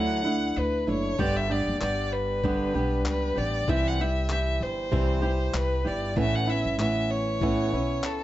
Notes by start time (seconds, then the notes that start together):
Already playing: D2 D3 F#3 A3 D4 E4 F#5
0.24 A3 D4 E4
0.57 D2 B4
0.87 F#1 A3 D4 E4 C#5
1.18 G1 G2 D3 G3 B3 D4 G4 D5, kick
1.37 E5
1.50 G3 B3 D4 G4 D5
1.67 F#1
1.80 G1 G3 B3 D4 G4 D5, clap
2.13 B4
2.43 G2 D3 G3 B3 D4 G4, kick
2.75 B1 G3 B3 D4 G4
3.06 C#2 B4, clap
3.35 A1 G3 B3 D4 G4 D5
3.68 C2 C3 E3 G3 E4 G4 E5, kick
3.87 F#5
4.00 G3 E4 G4 E5
4.30 E3 G3 E4 G4 E5, clap
4.61 G1 C5
4.91 C2 C3 E3 G3 E4 G4, kick
5.22 G3 E4 G4
5.54 C2 B4, clap
5.85 G1 G3 E4 G4 D5
6.16 A1 A2 E3 B3 C#4 E4 E5, kick
6.35 F#5
6.47 B3 C#4 E4 E5
6.65 G1
6.79 A1 E3 B3 C#4 E4 E5, clap
7.11 C#5
7.41 A2 E3 B3 C#4 E4, kick
7.73 B1 B3 C#4 E4
8.04 C#2 A4, clap